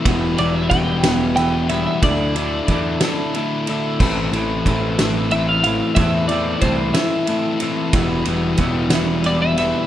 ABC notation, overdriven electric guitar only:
X:1
M:6/8
L:1/8
Q:3/8=61
K:Am
V:1 name="Overdriven electric guitar" clef=bass
[E,,B,,E,G,B,E] [E,,B,,E,G,B,E] [E,,B,,E,G,B,E] [E,,B,,E,G,B,E] [E,,B,,E,G,B,E] [E,,B,,E,G,B,E] | [D,A,DE] [D,A,DE] [D,A,DE] [D,A,DE] [D,A,DE] [D,A,DE] | [A,,E,A,CE] [A,,E,A,CE] [A,,E,A,CE] [A,,E,A,CE] [A,,E,A,CE] [A,,E,A,CE] | [A,,E,A,CE] [A,,E,A,CE] [A,,E,A,CE] [A,,E,A,CE] [A,,E,A,CE] [A,,E,A,CE] |
[E,,B,,E,G,B,E] [E,,B,,E,G,B,E] [E,,B,,E,G,B,E] [E,,B,,E,G,B,E] [E,,B,,E,G,B,E] [E,,B,,E,G,B,E] |]